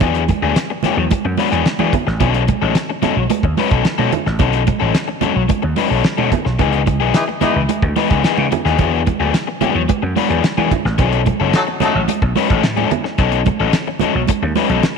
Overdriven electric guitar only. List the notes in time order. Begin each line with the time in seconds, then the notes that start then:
0.01 F#3 B3 D4 G#4
0.29 muted overdriven electric guitar stroke
0.43 F#3 B3 D4 G#4
0.57 muted overdriven electric guitar stroke
0.70 muted overdriven electric guitar stroke
0.84 F#3 B3 D4 G#4
0.98 muted overdriven electric guitar stroke
1.11 muted overdriven electric guitar stroke
1.25 muted overdriven electric guitar stroke
1.38 F#3 B3 D4 B4
1.51 F#3 B3 D4 G#4
1.66 muted overdriven electric guitar stroke
1.79 F#3 B3 D4 G#4
1.93 muted overdriven electric guitar stroke
2.07 muted overdriven electric guitar stroke
2.20 F#3 C#4 D#4 A4
2.48 muted overdriven electric guitar stroke
2.62 F#3 C#4 D#4 A4
2.76 muted overdriven electric guitar stroke
2.90 muted overdriven electric guitar stroke
3.02 F#3 C#4 D#4 A4
3.17 muted overdriven electric guitar stroke
3.30 muted overdriven electric guitar stroke
3.44 muted overdriven electric guitar stroke
3.58 F#3 C#4 D#4 B4
3.71 F#3 C#4 D#4 A4
3.85 muted overdriven electric guitar stroke
3.98 F#3 C#4 D#4 A4
4.12 muted overdriven electric guitar stroke
4.26 muted overdriven electric guitar stroke
4.40 F#3 C#4 D#4 A4
4.67 muted overdriven electric guitar stroke
4.80 F#3 C#4 D#4 A4
4.94 muted overdriven electric guitar stroke
5.08 muted overdriven electric guitar stroke
5.21 F#3 C#4 D#4 A4
5.35 muted overdriven electric guitar stroke
5.49 muted overdriven electric guitar stroke
5.62 muted overdriven electric guitar stroke
5.77 F#3 C#4 D#4 B4
5.90 F#3 C#4 D#4 A4
6.04 muted overdriven electric guitar stroke
6.18 F#3 C#4 D#4 A4
6.31 muted overdriven electric guitar stroke
6.45 muted overdriven electric guitar stroke
6.59 E3 B3 D#4 G#4
6.86 muted overdriven electric guitar stroke
7.00 E3 B3 D#4 G#4
7.14 muted overdriven electric guitar stroke
7.28 muted overdriven electric guitar stroke
7.41 E3 B3 D#4 G#4
7.55 muted overdriven electric guitar stroke
7.69 muted overdriven electric guitar stroke
7.83 muted overdriven electric guitar stroke
7.96 E3 B3 D#4 B4
8.10 E3 B3 D#4 G#4
8.23 E3 B3 D#4 G#4
8.51 muted overdriven electric guitar stroke
8.65 E3 B3 D#4 G#4
8.78 F#3 B3 D4 G#4
9.07 muted overdriven electric guitar stroke
9.20 F#3 B3 D4 G#4
9.34 muted overdriven electric guitar stroke
9.47 muted overdriven electric guitar stroke
9.61 F#3 B3 D4 G#4
9.75 muted overdriven electric guitar stroke
9.88 muted overdriven electric guitar stroke
10.02 muted overdriven electric guitar stroke
10.16 F#3 B3 D4 B4
10.30 F#3 B3 D4 G#4
10.44 muted overdriven electric guitar stroke
10.57 F#3 B3 D4 G#4
10.71 muted overdriven electric guitar stroke
10.85 muted overdriven electric guitar stroke
10.98 F#3 C#4 D#4 A4
11.26 muted overdriven electric guitar stroke
11.40 F#3 C#4 D#4 A4
11.53 muted overdriven electric guitar stroke
11.67 muted overdriven electric guitar stroke
11.81 F#3 C#4 D#4 A4
11.94 muted overdriven electric guitar stroke
12.08 muted overdriven electric guitar stroke
12.22 muted overdriven electric guitar stroke
12.36 F#3 C#4 D#4 B4
12.49 F#3 C#4 D#4 A4
12.63 muted overdriven electric guitar stroke
12.77 F#3 C#4 D#4 A4
12.91 muted overdriven electric guitar stroke
13.04 muted overdriven electric guitar stroke
13.18 F#3 C#4 D#4 A4
13.47 muted overdriven electric guitar stroke
13.60 F#3 C#4 D#4 A4
13.74 muted overdriven electric guitar stroke
13.88 muted overdriven electric guitar stroke
14.01 F#3 C#4 D#4 A4
14.15 muted overdriven electric guitar stroke
14.29 muted overdriven electric guitar stroke
14.43 muted overdriven electric guitar stroke
14.56 F#3 C#4 D#4 B4
14.69 F#3 C#4 D#4 A4
14.83 muted overdriven electric guitar stroke